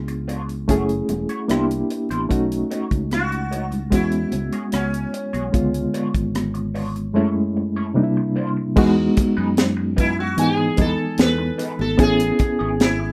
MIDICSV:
0, 0, Header, 1, 7, 480
1, 0, Start_track
1, 0, Key_signature, 4, "major"
1, 0, Tempo, 807537
1, 1371, Time_signature, 4, 2, 24, 8
1, 7799, End_track
2, 0, Start_track
2, 0, Title_t, "Sitar"
2, 0, Program_c, 0, 104
2, 1864, Note_on_c, 0, 66, 91
2, 2314, Note_off_c, 0, 66, 0
2, 2342, Note_on_c, 0, 64, 93
2, 2815, Note_off_c, 0, 64, 0
2, 2817, Note_on_c, 0, 61, 72
2, 4710, Note_off_c, 0, 61, 0
2, 5942, Note_on_c, 0, 64, 92
2, 6059, Note_off_c, 0, 64, 0
2, 6063, Note_on_c, 0, 66, 85
2, 6168, Note_off_c, 0, 66, 0
2, 6187, Note_on_c, 0, 68, 86
2, 6424, Note_off_c, 0, 68, 0
2, 6426, Note_on_c, 0, 69, 83
2, 6663, Note_off_c, 0, 69, 0
2, 6665, Note_on_c, 0, 71, 96
2, 7018, Note_off_c, 0, 71, 0
2, 7021, Note_on_c, 0, 69, 88
2, 7126, Note_off_c, 0, 69, 0
2, 7146, Note_on_c, 0, 68, 104
2, 7617, Note_on_c, 0, 64, 96
2, 7630, Note_off_c, 0, 68, 0
2, 7799, Note_off_c, 0, 64, 0
2, 7799, End_track
3, 0, Start_track
3, 0, Title_t, "Clean electric guitar"
3, 0, Program_c, 1, 27
3, 165, Note_on_c, 1, 59, 74
3, 168, Note_on_c, 1, 62, 74
3, 171, Note_on_c, 1, 65, 72
3, 172, Note_on_c, 1, 73, 70
3, 244, Note_off_c, 1, 59, 0
3, 246, Note_off_c, 1, 62, 0
3, 247, Note_off_c, 1, 65, 0
3, 248, Note_off_c, 1, 73, 0
3, 410, Note_on_c, 1, 57, 62
3, 411, Note_on_c, 1, 64, 67
3, 413, Note_on_c, 1, 66, 71
3, 415, Note_on_c, 1, 73, 71
3, 486, Note_off_c, 1, 57, 0
3, 487, Note_off_c, 1, 64, 0
3, 488, Note_off_c, 1, 66, 0
3, 489, Note_off_c, 1, 73, 0
3, 769, Note_on_c, 1, 73, 46
3, 772, Note_on_c, 1, 66, 48
3, 776, Note_on_c, 1, 64, 42
3, 777, Note_on_c, 1, 57, 37
3, 829, Note_off_c, 1, 73, 0
3, 831, Note_off_c, 1, 66, 0
3, 833, Note_off_c, 1, 57, 0
3, 833, Note_off_c, 1, 64, 0
3, 892, Note_on_c, 1, 58, 68
3, 894, Note_on_c, 1, 62, 64
3, 896, Note_on_c, 1, 64, 78
3, 898, Note_on_c, 1, 72, 65
3, 968, Note_off_c, 1, 58, 0
3, 969, Note_off_c, 1, 62, 0
3, 970, Note_off_c, 1, 64, 0
3, 971, Note_off_c, 1, 72, 0
3, 1251, Note_on_c, 1, 72, 55
3, 1256, Note_on_c, 1, 64, 51
3, 1258, Note_on_c, 1, 62, 48
3, 1261, Note_on_c, 1, 58, 41
3, 1311, Note_off_c, 1, 72, 0
3, 1313, Note_off_c, 1, 64, 0
3, 1314, Note_off_c, 1, 62, 0
3, 1315, Note_off_c, 1, 58, 0
3, 1608, Note_on_c, 1, 57, 62
3, 1610, Note_on_c, 1, 63, 57
3, 1615, Note_on_c, 1, 66, 62
3, 1615, Note_on_c, 1, 73, 63
3, 1686, Note_off_c, 1, 57, 0
3, 1687, Note_off_c, 1, 63, 0
3, 1689, Note_off_c, 1, 66, 0
3, 1689, Note_off_c, 1, 73, 0
3, 2087, Note_on_c, 1, 57, 57
3, 2089, Note_on_c, 1, 63, 67
3, 2092, Note_on_c, 1, 66, 71
3, 2094, Note_on_c, 1, 73, 71
3, 2165, Note_off_c, 1, 57, 0
3, 2166, Note_off_c, 1, 63, 0
3, 2168, Note_off_c, 1, 66, 0
3, 2169, Note_off_c, 1, 73, 0
3, 2326, Note_on_c, 1, 61, 61
3, 2328, Note_on_c, 1, 66, 64
3, 2331, Note_on_c, 1, 68, 70
3, 2334, Note_on_c, 1, 73, 70
3, 2405, Note_off_c, 1, 61, 0
3, 2406, Note_off_c, 1, 66, 0
3, 2407, Note_off_c, 1, 68, 0
3, 2409, Note_off_c, 1, 73, 0
3, 2690, Note_on_c, 1, 73, 48
3, 2692, Note_on_c, 1, 68, 49
3, 2696, Note_on_c, 1, 66, 46
3, 2697, Note_on_c, 1, 61, 40
3, 2750, Note_off_c, 1, 73, 0
3, 2751, Note_off_c, 1, 68, 0
3, 2753, Note_off_c, 1, 66, 0
3, 2754, Note_off_c, 1, 61, 0
3, 2809, Note_on_c, 1, 61, 53
3, 2812, Note_on_c, 1, 66, 71
3, 2816, Note_on_c, 1, 68, 76
3, 2818, Note_on_c, 1, 73, 68
3, 2886, Note_off_c, 1, 61, 0
3, 2888, Note_off_c, 1, 66, 0
3, 2890, Note_off_c, 1, 68, 0
3, 2891, Note_off_c, 1, 73, 0
3, 3169, Note_on_c, 1, 73, 51
3, 3171, Note_on_c, 1, 68, 51
3, 3174, Note_on_c, 1, 66, 49
3, 3176, Note_on_c, 1, 61, 39
3, 3230, Note_off_c, 1, 73, 0
3, 3231, Note_off_c, 1, 68, 0
3, 3232, Note_off_c, 1, 66, 0
3, 3233, Note_off_c, 1, 61, 0
3, 3529, Note_on_c, 1, 59, 55
3, 3532, Note_on_c, 1, 62, 68
3, 3534, Note_on_c, 1, 65, 71
3, 3535, Note_on_c, 1, 73, 67
3, 3606, Note_off_c, 1, 59, 0
3, 3608, Note_off_c, 1, 62, 0
3, 3609, Note_off_c, 1, 65, 0
3, 3609, Note_off_c, 1, 73, 0
3, 4009, Note_on_c, 1, 59, 69
3, 4012, Note_on_c, 1, 62, 72
3, 4014, Note_on_c, 1, 65, 73
3, 4018, Note_on_c, 1, 73, 73
3, 4086, Note_off_c, 1, 59, 0
3, 4088, Note_off_c, 1, 62, 0
3, 4088, Note_off_c, 1, 65, 0
3, 4090, Note_off_c, 1, 73, 0
3, 4253, Note_on_c, 1, 61, 67
3, 4256, Note_on_c, 1, 64, 66
3, 4258, Note_on_c, 1, 69, 72
3, 4259, Note_on_c, 1, 73, 74
3, 4328, Note_off_c, 1, 61, 0
3, 4329, Note_off_c, 1, 64, 0
3, 4330, Note_off_c, 1, 69, 0
3, 4331, Note_off_c, 1, 73, 0
3, 4615, Note_on_c, 1, 73, 51
3, 4618, Note_on_c, 1, 64, 47
3, 4618, Note_on_c, 1, 69, 46
3, 4621, Note_on_c, 1, 61, 41
3, 4672, Note_off_c, 1, 73, 0
3, 4674, Note_off_c, 1, 64, 0
3, 4674, Note_off_c, 1, 69, 0
3, 4675, Note_off_c, 1, 61, 0
3, 4967, Note_on_c, 1, 58, 70
3, 4971, Note_on_c, 1, 62, 75
3, 4974, Note_on_c, 1, 64, 71
3, 4975, Note_on_c, 1, 72, 73
3, 5045, Note_off_c, 1, 58, 0
3, 5047, Note_off_c, 1, 62, 0
3, 5048, Note_off_c, 1, 64, 0
3, 5049, Note_off_c, 1, 72, 0
3, 5206, Note_on_c, 1, 59, 60
3, 5209, Note_on_c, 1, 63, 66
3, 5212, Note_on_c, 1, 68, 82
3, 5214, Note_on_c, 1, 71, 76
3, 5284, Note_off_c, 1, 59, 0
3, 5286, Note_off_c, 1, 63, 0
3, 5287, Note_off_c, 1, 68, 0
3, 5288, Note_off_c, 1, 71, 0
3, 5568, Note_on_c, 1, 71, 59
3, 5570, Note_on_c, 1, 68, 57
3, 5572, Note_on_c, 1, 63, 51
3, 5573, Note_on_c, 1, 59, 50
3, 5628, Note_off_c, 1, 71, 0
3, 5629, Note_off_c, 1, 68, 0
3, 5630, Note_off_c, 1, 63, 0
3, 5631, Note_off_c, 1, 59, 0
3, 5923, Note_on_c, 1, 59, 72
3, 5924, Note_on_c, 1, 63, 69
3, 5927, Note_on_c, 1, 68, 68
3, 5929, Note_on_c, 1, 71, 73
3, 6002, Note_off_c, 1, 59, 0
3, 6002, Note_off_c, 1, 63, 0
3, 6004, Note_off_c, 1, 68, 0
3, 6005, Note_off_c, 1, 71, 0
3, 6402, Note_on_c, 1, 59, 66
3, 6408, Note_on_c, 1, 63, 78
3, 6409, Note_on_c, 1, 68, 76
3, 6410, Note_on_c, 1, 71, 79
3, 6481, Note_off_c, 1, 59, 0
3, 6484, Note_off_c, 1, 63, 0
3, 6485, Note_off_c, 1, 68, 0
3, 6485, Note_off_c, 1, 71, 0
3, 6883, Note_on_c, 1, 59, 76
3, 6886, Note_on_c, 1, 63, 82
3, 6890, Note_on_c, 1, 68, 79
3, 6892, Note_on_c, 1, 71, 82
3, 6961, Note_off_c, 1, 59, 0
3, 6963, Note_off_c, 1, 63, 0
3, 6965, Note_off_c, 1, 68, 0
3, 6966, Note_off_c, 1, 71, 0
3, 7123, Note_on_c, 1, 52, 81
3, 7126, Note_on_c, 1, 57, 68
3, 7128, Note_on_c, 1, 61, 84
3, 7130, Note_on_c, 1, 68, 85
3, 7201, Note_off_c, 1, 52, 0
3, 7203, Note_off_c, 1, 57, 0
3, 7204, Note_off_c, 1, 61, 0
3, 7205, Note_off_c, 1, 68, 0
3, 7484, Note_on_c, 1, 68, 56
3, 7488, Note_on_c, 1, 61, 58
3, 7490, Note_on_c, 1, 57, 45
3, 7493, Note_on_c, 1, 52, 51
3, 7545, Note_off_c, 1, 68, 0
3, 7547, Note_off_c, 1, 61, 0
3, 7548, Note_off_c, 1, 57, 0
3, 7549, Note_off_c, 1, 52, 0
3, 7799, End_track
4, 0, Start_track
4, 0, Title_t, "Reed electric piano"
4, 0, Program_c, 2, 4
4, 0, Control_c, 2, 64, 127
4, 0, Note_on_c, 2, 59, 64
4, 0, Note_on_c, 2, 62, 66
4, 0, Note_on_c, 2, 65, 61
4, 0, Note_on_c, 2, 68, 73
4, 137, Note_off_c, 2, 59, 0
4, 139, Note_off_c, 2, 62, 0
4, 142, Note_off_c, 2, 65, 0
4, 145, Note_off_c, 2, 68, 0
4, 403, Note_on_c, 2, 57, 80
4, 409, Note_on_c, 2, 61, 77
4, 415, Note_on_c, 2, 64, 64
4, 419, Control_c, 2, 64, 0
4, 419, Note_on_c, 2, 68, 91
4, 522, Control_c, 2, 64, 127
4, 881, Note_on_c, 2, 58, 77
4, 886, Note_off_c, 2, 64, 0
4, 887, Note_off_c, 2, 57, 0
4, 888, Note_on_c, 2, 62, 73
4, 890, Note_off_c, 2, 61, 0
4, 893, Note_on_c, 2, 64, 75
4, 895, Note_off_c, 2, 68, 0
4, 899, Control_c, 2, 64, 0
4, 900, Note_on_c, 2, 67, 81
4, 986, Control_c, 2, 64, 127
4, 1270, Note_off_c, 2, 58, 0
4, 1274, Note_off_c, 2, 62, 0
4, 1276, Note_off_c, 2, 64, 0
4, 1280, Note_off_c, 2, 67, 0
4, 1361, Note_on_c, 2, 57, 79
4, 1364, Note_on_c, 2, 61, 71
4, 1370, Note_on_c, 2, 63, 74
4, 1374, Note_on_c, 2, 66, 85
4, 1378, Control_c, 2, 64, 0
4, 1497, Control_c, 2, 64, 127
4, 2056, Note_off_c, 2, 57, 0
4, 2058, Note_off_c, 2, 61, 0
4, 2061, Note_off_c, 2, 63, 0
4, 2063, Note_off_c, 2, 66, 0
4, 2321, Note_on_c, 2, 56, 69
4, 2327, Note_on_c, 2, 59, 61
4, 2332, Note_on_c, 2, 61, 56
4, 2336, Note_on_c, 2, 66, 69
4, 2339, Control_c, 2, 64, 0
4, 2453, Control_c, 2, 64, 127
4, 3016, Note_off_c, 2, 56, 0
4, 3019, Note_off_c, 2, 59, 0
4, 3022, Note_off_c, 2, 61, 0
4, 3024, Note_off_c, 2, 66, 0
4, 3282, Note_on_c, 2, 56, 63
4, 3285, Note_on_c, 2, 59, 61
4, 3293, Note_on_c, 2, 50, 56
4, 3297, Note_on_c, 2, 65, 74
4, 3299, Control_c, 2, 64, 0
4, 3412, Control_c, 2, 64, 127
4, 3976, Note_off_c, 2, 56, 0
4, 3978, Note_off_c, 2, 59, 0
4, 3982, Note_off_c, 2, 50, 0
4, 3984, Note_off_c, 2, 65, 0
4, 4240, Note_on_c, 2, 42, 80
4, 4245, Note_on_c, 2, 56, 75
4, 4248, Note_on_c, 2, 57, 73
4, 4253, Note_on_c, 2, 61, 72
4, 4258, Control_c, 2, 64, 0
4, 4258, Note_on_c, 2, 64, 76
4, 4371, Control_c, 2, 64, 127
4, 4721, Note_on_c, 2, 48, 77
4, 4725, Note_off_c, 2, 42, 0
4, 4727, Note_on_c, 2, 55, 76
4, 4728, Note_off_c, 2, 56, 0
4, 4729, Note_off_c, 2, 57, 0
4, 4730, Note_on_c, 2, 58, 64
4, 4731, Note_off_c, 2, 61, 0
4, 4732, Note_on_c, 2, 62, 69
4, 4734, Note_off_c, 2, 64, 0
4, 4737, Note_on_c, 2, 63, 67
4, 4738, Control_c, 2, 64, 0
4, 4772, Note_off_c, 2, 63, 0
4, 4776, Note_on_c, 2, 64, 77
4, 4854, Control_c, 2, 64, 127
4, 5109, Note_off_c, 2, 48, 0
4, 5112, Note_off_c, 2, 55, 0
4, 5114, Note_off_c, 2, 58, 0
4, 5115, Note_off_c, 2, 62, 0
4, 5137, Note_off_c, 2, 64, 0
4, 5206, Note_on_c, 2, 56, 94
4, 5212, Note_on_c, 2, 59, 86
4, 5215, Note_on_c, 2, 63, 80
4, 5219, Control_c, 2, 64, 0
4, 5221, Note_on_c, 2, 66, 99
4, 5329, Control_c, 2, 64, 127
4, 5897, Note_off_c, 2, 56, 0
4, 5900, Note_off_c, 2, 59, 0
4, 5902, Note_off_c, 2, 63, 0
4, 5905, Note_off_c, 2, 66, 0
4, 6162, Note_on_c, 2, 52, 70
4, 6168, Note_on_c, 2, 59, 68
4, 6171, Note_on_c, 2, 63, 65
4, 6179, Note_on_c, 2, 80, 80
4, 6855, Note_off_c, 2, 52, 0
4, 6857, Note_off_c, 2, 59, 0
4, 6859, Note_off_c, 2, 63, 0
4, 6863, Note_off_c, 2, 80, 0
4, 7118, Note_on_c, 2, 59, 76
4, 7121, Note_on_c, 2, 61, 75
4, 7127, Note_on_c, 2, 64, 69
4, 7133, Note_on_c, 2, 68, 83
4, 7136, Control_c, 2, 64, 0
4, 7254, Control_c, 2, 64, 127
4, 7799, Note_off_c, 2, 59, 0
4, 7799, Note_off_c, 2, 61, 0
4, 7799, Note_off_c, 2, 64, 0
4, 7799, Note_off_c, 2, 68, 0
4, 7799, End_track
5, 0, Start_track
5, 0, Title_t, "Fingered electric bass"
5, 0, Program_c, 3, 33
5, 0, Note_on_c, 3, 37, 74
5, 387, Note_off_c, 3, 37, 0
5, 413, Note_on_c, 3, 30, 98
5, 599, Note_off_c, 3, 30, 0
5, 649, Note_on_c, 3, 28, 80
5, 743, Note_off_c, 3, 28, 0
5, 890, Note_on_c, 3, 36, 83
5, 1078, Note_off_c, 3, 36, 0
5, 1251, Note_on_c, 3, 33, 80
5, 1345, Note_off_c, 3, 33, 0
5, 1371, Note_on_c, 3, 35, 85
5, 1558, Note_off_c, 3, 35, 0
5, 1733, Note_on_c, 3, 37, 92
5, 2308, Note_off_c, 3, 37, 0
5, 2332, Note_on_c, 3, 40, 88
5, 2519, Note_off_c, 3, 40, 0
5, 2577, Note_on_c, 3, 37, 89
5, 2668, Note_off_c, 3, 37, 0
5, 2813, Note_on_c, 3, 37, 79
5, 2999, Note_off_c, 3, 37, 0
5, 3174, Note_on_c, 3, 35, 79
5, 3266, Note_off_c, 3, 35, 0
5, 3293, Note_on_c, 3, 37, 90
5, 3479, Note_off_c, 3, 37, 0
5, 3656, Note_on_c, 3, 32, 78
5, 4229, Note_off_c, 3, 32, 0
5, 5213, Note_on_c, 3, 40, 90
5, 5399, Note_off_c, 3, 40, 0
5, 5575, Note_on_c, 3, 42, 89
5, 6147, Note_off_c, 3, 42, 0
5, 6170, Note_on_c, 3, 44, 89
5, 6356, Note_off_c, 3, 44, 0
5, 6410, Note_on_c, 3, 40, 102
5, 6503, Note_off_c, 3, 40, 0
5, 6649, Note_on_c, 3, 40, 90
5, 6835, Note_off_c, 3, 40, 0
5, 7010, Note_on_c, 3, 32, 99
5, 7103, Note_off_c, 3, 32, 0
5, 7128, Note_on_c, 3, 33, 96
5, 7315, Note_off_c, 3, 33, 0
5, 7494, Note_on_c, 3, 32, 89
5, 7799, Note_off_c, 3, 32, 0
5, 7799, End_track
6, 0, Start_track
6, 0, Title_t, "Muted clean electric guitar strokes"
6, 49, Note_on_c, 9, 29, 43
6, 108, Note_off_c, 9, 29, 0
6, 289, Note_on_c, 9, 29, 43
6, 349, Note_off_c, 9, 29, 0
6, 649, Note_on_c, 9, 29, 33
6, 709, Note_off_c, 9, 29, 0
6, 1132, Note_on_c, 9, 29, 31
6, 1192, Note_off_c, 9, 29, 0
6, 1965, Note_on_c, 9, 29, 33
6, 2025, Note_off_c, 9, 29, 0
6, 2204, Note_on_c, 9, 29, 34
6, 2263, Note_off_c, 9, 29, 0
6, 2570, Note_on_c, 9, 29, 25
6, 2630, Note_off_c, 9, 29, 0
6, 3050, Note_on_c, 9, 29, 36
6, 3109, Note_off_c, 9, 29, 0
6, 3888, Note_on_c, 9, 29, 36
6, 3948, Note_off_c, 9, 29, 0
6, 4136, Note_on_c, 9, 29, 35
6, 4195, Note_off_c, 9, 29, 0
6, 4497, Note_on_c, 9, 29, 29
6, 4557, Note_off_c, 9, 29, 0
6, 4857, Note_on_c, 9, 29, 40
6, 4916, Note_off_c, 9, 29, 0
6, 5091, Note_on_c, 9, 29, 35
6, 5150, Note_off_c, 9, 29, 0
6, 5449, Note_on_c, 9, 29, 33
6, 5509, Note_off_c, 9, 29, 0
6, 5806, Note_on_c, 9, 29, 52
6, 5866, Note_off_c, 9, 29, 0
6, 6043, Note_on_c, 9, 29, 41
6, 6102, Note_off_c, 9, 29, 0
6, 6284, Note_on_c, 9, 29, 42
6, 6343, Note_off_c, 9, 29, 0
6, 6526, Note_on_c, 9, 29, 34
6, 6585, Note_off_c, 9, 29, 0
6, 6767, Note_on_c, 9, 29, 42
6, 6826, Note_off_c, 9, 29, 0
6, 7008, Note_on_c, 9, 29, 38
6, 7067, Note_off_c, 9, 29, 0
6, 7369, Note_on_c, 9, 29, 26
6, 7428, Note_off_c, 9, 29, 0
6, 7725, Note_on_c, 9, 29, 51
6, 7784, Note_off_c, 9, 29, 0
6, 7799, End_track
7, 0, Start_track
7, 0, Title_t, "Drums"
7, 47, Note_on_c, 9, 42, 39
7, 106, Note_off_c, 9, 42, 0
7, 171, Note_on_c, 9, 42, 49
7, 231, Note_off_c, 9, 42, 0
7, 291, Note_on_c, 9, 42, 37
7, 351, Note_off_c, 9, 42, 0
7, 408, Note_on_c, 9, 42, 90
7, 409, Note_on_c, 9, 64, 60
7, 410, Note_on_c, 9, 36, 95
7, 468, Note_off_c, 9, 42, 0
7, 468, Note_off_c, 9, 64, 0
7, 469, Note_off_c, 9, 36, 0
7, 529, Note_on_c, 9, 42, 47
7, 588, Note_off_c, 9, 42, 0
7, 645, Note_on_c, 9, 42, 62
7, 647, Note_on_c, 9, 62, 47
7, 647, Note_on_c, 9, 64, 68
7, 705, Note_off_c, 9, 42, 0
7, 707, Note_off_c, 9, 62, 0
7, 707, Note_off_c, 9, 64, 0
7, 766, Note_on_c, 9, 42, 41
7, 825, Note_off_c, 9, 42, 0
7, 887, Note_on_c, 9, 42, 83
7, 891, Note_on_c, 9, 63, 62
7, 898, Note_on_c, 9, 37, 112
7, 946, Note_off_c, 9, 42, 0
7, 951, Note_off_c, 9, 63, 0
7, 957, Note_off_c, 9, 37, 0
7, 1014, Note_on_c, 9, 42, 56
7, 1074, Note_off_c, 9, 42, 0
7, 1130, Note_on_c, 9, 42, 70
7, 1189, Note_off_c, 9, 42, 0
7, 1243, Note_on_c, 9, 63, 59
7, 1252, Note_on_c, 9, 42, 43
7, 1302, Note_off_c, 9, 63, 0
7, 1312, Note_off_c, 9, 42, 0
7, 1371, Note_on_c, 9, 36, 82
7, 1372, Note_on_c, 9, 42, 76
7, 1430, Note_off_c, 9, 36, 0
7, 1431, Note_off_c, 9, 42, 0
7, 1495, Note_on_c, 9, 42, 58
7, 1555, Note_off_c, 9, 42, 0
7, 1612, Note_on_c, 9, 42, 75
7, 1614, Note_on_c, 9, 62, 45
7, 1671, Note_off_c, 9, 42, 0
7, 1673, Note_off_c, 9, 62, 0
7, 1731, Note_on_c, 9, 36, 92
7, 1735, Note_on_c, 9, 42, 48
7, 1791, Note_off_c, 9, 36, 0
7, 1795, Note_off_c, 9, 42, 0
7, 1851, Note_on_c, 9, 63, 59
7, 1853, Note_on_c, 9, 42, 69
7, 1859, Note_on_c, 9, 37, 98
7, 1910, Note_off_c, 9, 63, 0
7, 1912, Note_off_c, 9, 42, 0
7, 1919, Note_off_c, 9, 37, 0
7, 1973, Note_on_c, 9, 42, 37
7, 2032, Note_off_c, 9, 42, 0
7, 2094, Note_on_c, 9, 42, 57
7, 2153, Note_off_c, 9, 42, 0
7, 2209, Note_on_c, 9, 64, 68
7, 2210, Note_on_c, 9, 42, 41
7, 2269, Note_off_c, 9, 64, 0
7, 2270, Note_off_c, 9, 42, 0
7, 2329, Note_on_c, 9, 42, 94
7, 2330, Note_on_c, 9, 36, 84
7, 2389, Note_off_c, 9, 42, 0
7, 2390, Note_off_c, 9, 36, 0
7, 2446, Note_on_c, 9, 42, 47
7, 2505, Note_off_c, 9, 42, 0
7, 2567, Note_on_c, 9, 42, 75
7, 2567, Note_on_c, 9, 62, 48
7, 2567, Note_on_c, 9, 64, 74
7, 2626, Note_off_c, 9, 42, 0
7, 2626, Note_off_c, 9, 62, 0
7, 2626, Note_off_c, 9, 64, 0
7, 2688, Note_on_c, 9, 42, 40
7, 2747, Note_off_c, 9, 42, 0
7, 2805, Note_on_c, 9, 42, 76
7, 2812, Note_on_c, 9, 63, 64
7, 2816, Note_on_c, 9, 37, 109
7, 2864, Note_off_c, 9, 42, 0
7, 2871, Note_off_c, 9, 63, 0
7, 2875, Note_off_c, 9, 37, 0
7, 2934, Note_on_c, 9, 42, 51
7, 2994, Note_off_c, 9, 42, 0
7, 3054, Note_on_c, 9, 42, 72
7, 3113, Note_off_c, 9, 42, 0
7, 3170, Note_on_c, 9, 63, 57
7, 3175, Note_on_c, 9, 42, 40
7, 3230, Note_off_c, 9, 63, 0
7, 3234, Note_off_c, 9, 42, 0
7, 3293, Note_on_c, 9, 36, 92
7, 3293, Note_on_c, 9, 42, 73
7, 3352, Note_off_c, 9, 36, 0
7, 3352, Note_off_c, 9, 42, 0
7, 3412, Note_on_c, 9, 42, 58
7, 3472, Note_off_c, 9, 42, 0
7, 3531, Note_on_c, 9, 42, 72
7, 3538, Note_on_c, 9, 62, 43
7, 3590, Note_off_c, 9, 42, 0
7, 3598, Note_off_c, 9, 62, 0
7, 3653, Note_on_c, 9, 36, 89
7, 3654, Note_on_c, 9, 42, 47
7, 3712, Note_off_c, 9, 36, 0
7, 3714, Note_off_c, 9, 42, 0
7, 3773, Note_on_c, 9, 42, 70
7, 3776, Note_on_c, 9, 63, 67
7, 3779, Note_on_c, 9, 37, 93
7, 3832, Note_off_c, 9, 42, 0
7, 3836, Note_off_c, 9, 63, 0
7, 3839, Note_off_c, 9, 37, 0
7, 3890, Note_on_c, 9, 42, 37
7, 3950, Note_off_c, 9, 42, 0
7, 4013, Note_on_c, 9, 46, 35
7, 4073, Note_off_c, 9, 46, 0
7, 4135, Note_on_c, 9, 42, 37
7, 4194, Note_off_c, 9, 42, 0
7, 5211, Note_on_c, 9, 36, 109
7, 5211, Note_on_c, 9, 49, 76
7, 5217, Note_on_c, 9, 62, 33
7, 5270, Note_off_c, 9, 36, 0
7, 5271, Note_off_c, 9, 49, 0
7, 5277, Note_off_c, 9, 62, 0
7, 5448, Note_on_c, 9, 42, 84
7, 5453, Note_on_c, 9, 36, 92
7, 5455, Note_on_c, 9, 62, 55
7, 5507, Note_off_c, 9, 42, 0
7, 5513, Note_off_c, 9, 36, 0
7, 5515, Note_off_c, 9, 62, 0
7, 5688, Note_on_c, 9, 42, 79
7, 5695, Note_on_c, 9, 38, 104
7, 5696, Note_on_c, 9, 63, 77
7, 5748, Note_off_c, 9, 42, 0
7, 5754, Note_off_c, 9, 38, 0
7, 5755, Note_off_c, 9, 63, 0
7, 5931, Note_on_c, 9, 42, 63
7, 5933, Note_on_c, 9, 36, 94
7, 5990, Note_off_c, 9, 42, 0
7, 5992, Note_off_c, 9, 36, 0
7, 6167, Note_on_c, 9, 42, 104
7, 6227, Note_off_c, 9, 42, 0
7, 6402, Note_on_c, 9, 42, 77
7, 6407, Note_on_c, 9, 62, 61
7, 6407, Note_on_c, 9, 64, 83
7, 6409, Note_on_c, 9, 36, 90
7, 6461, Note_off_c, 9, 42, 0
7, 6467, Note_off_c, 9, 62, 0
7, 6467, Note_off_c, 9, 64, 0
7, 6468, Note_off_c, 9, 36, 0
7, 6643, Note_on_c, 9, 42, 88
7, 6653, Note_on_c, 9, 63, 67
7, 6654, Note_on_c, 9, 38, 127
7, 6702, Note_off_c, 9, 42, 0
7, 6712, Note_off_c, 9, 63, 0
7, 6713, Note_off_c, 9, 38, 0
7, 6889, Note_on_c, 9, 42, 78
7, 6949, Note_off_c, 9, 42, 0
7, 7009, Note_on_c, 9, 63, 66
7, 7068, Note_off_c, 9, 63, 0
7, 7124, Note_on_c, 9, 42, 76
7, 7126, Note_on_c, 9, 36, 112
7, 7133, Note_on_c, 9, 62, 36
7, 7183, Note_off_c, 9, 42, 0
7, 7185, Note_off_c, 9, 36, 0
7, 7192, Note_off_c, 9, 62, 0
7, 7249, Note_on_c, 9, 42, 65
7, 7308, Note_off_c, 9, 42, 0
7, 7363, Note_on_c, 9, 42, 81
7, 7369, Note_on_c, 9, 36, 94
7, 7375, Note_on_c, 9, 62, 53
7, 7422, Note_off_c, 9, 42, 0
7, 7429, Note_off_c, 9, 36, 0
7, 7435, Note_off_c, 9, 62, 0
7, 7607, Note_on_c, 9, 42, 74
7, 7614, Note_on_c, 9, 38, 110
7, 7616, Note_on_c, 9, 63, 70
7, 7667, Note_off_c, 9, 42, 0
7, 7673, Note_off_c, 9, 38, 0
7, 7676, Note_off_c, 9, 63, 0
7, 7799, End_track
0, 0, End_of_file